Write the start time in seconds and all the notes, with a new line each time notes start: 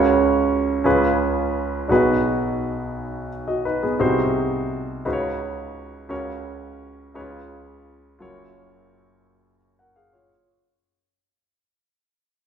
Already playing: C#2 C#3 C#4 F#4 A#4 C#5
0.84 C#2 C#3 C#4 F4 G#4 B4
1.88 B1 B2 D4 F#4 G#4 B4
1.95 D#4
3.48 F#4 D#5
3.65 D#4 B4
3.83 B3 G#4
3.99 C2 C3 D#4 F#4 G#4 C5
5.05 C#2 C#3 D#4 F#4 B4 C5
5.13 C#5
6.09 C#2 C#3 C#4 F#4 A#4 C#5
7.14 C#2 C#3 D#4 G#4 B4 C#5
7.21 F4
8.19 F#1 F#2 F4 F#4 A#4 C#5
9.79 A#4 F#5
9.96 G#4 F5
10.13 F4 C#5